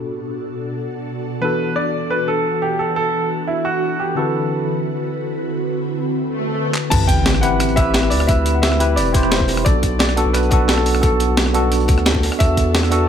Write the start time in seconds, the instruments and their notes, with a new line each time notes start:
Already playing: ambient pad B2 D4 F#4 A4, tine electric piano B3 D4 F#4 A4
1.41 tine electric piano E3 B3 D4 F#4 A4, ambient pad E3 B4, grand piano B4
1.76 grand piano D5
2.11 grand piano B4
2.28 grand piano A4
2.62 grand piano G4
2.79 grand piano A4
2.96 grand piano A4
3.48 grand piano E4
3.65 grand piano F#4
3.99 grand piano G4
4.15 tine electric piano D3 C4 E4 F#4 A4 B4, ambient pad D3 C4 E4 B4, grand piano A4
6.23 swell
6.74 clap
6.90 sub bass A1, tine electric piano C4 E4 G4 B4, ambient pad C4 G4 B5, grand piano A5, kick, closed hi-hat, crash, sub drop
7.08 grand piano G5, kick, closed hi-hat
7.26 snare, closed hi-hat
7.34 cross-stick
7.41 tine electric piano C4 E4 G4 B4, grand piano F#5, closed hi-hat
7.60 cross-stick, closed hi-hat
7.69 closed hi-hat
7.76 tine electric piano C4 E4 G4 B4, grand piano E5, kick, closed hi-hat
7.94 snare, closed hi-hat
8.03 cross-stick
8.10 sub bass D2, grand piano D5, closed hi-hat, open hi-hat
8.20 cross-stick
8.27 tine electric piano C4 E4 G4 B4, grand piano E5, kick, closed hi-hat
8.46 closed hi-hat
8.54 grand piano F#5
8.62 grand piano E5, snare, closed hi-hat
8.72 cross-stick
8.79 tine electric piano C4 E4 G4 B4, closed hi-hat
8.96 sub bass E1, grand piano D5, closed hi-hat
9.05 closed hi-hat
9.12 tine electric piano C4 E4 G4 C5, kick, closed hi-hat
9.23 cross-stick
9.30 grand piano C5, snare, closed hi-hat
9.40 kick, snare
9.48 snare, closed hi-hat, open hi-hat
9.57 cross-stick, closed hi-hat
9.64 sub bass B1, tine electric piano B3 D4 F#4 A4, ambient pad D4 F#4 A4, grand piano D5, kick, closed hi-hat
9.83 kick, closed hi-hat
9.99 grand piano D5, snare, closed hi-hat
10.09 cross-stick, closed hi-hat
10.16 tine electric piano B3 D4 F#4 A4, closed hi-hat
10.26 sub bass B1
10.33 grand piano B4, cross-stick, closed hi-hat
10.43 closed hi-hat
10.50 tine electric piano B3 D4 F#4 A4, kick, closed hi-hat
10.68 grand piano A4, snare, closed hi-hat
10.78 cross-stick
10.86 closed hi-hat, open hi-hat
10.95 cross-stick
11.01 tine electric piano B3 D4 F#4 A4, grand piano A4, kick, closed hi-hat
11.20 closed hi-hat
11.37 snare, closed hi-hat
11.46 cross-stick
11.53 tine electric piano B3 D4 F#4 A4, closed hi-hat
11.72 closed hi-hat
11.80 closed hi-hat
11.88 sub bass D2, kick, closed hi-hat
11.98 cross-stick
12.06 snare, closed hi-hat
12.14 kick, snare
12.23 snare, closed hi-hat, open hi-hat
12.32 cross-stick, closed hi-hat
12.38 sub bass E2, tine electric piano B3 D4 F#4 A4, grand piano E5, kick, closed hi-hat
12.57 kick, closed hi-hat
12.75 snare, closed hi-hat
12.83 cross-stick, closed hi-hat
12.91 tine electric piano B3 D4 F#4 A4, closed hi-hat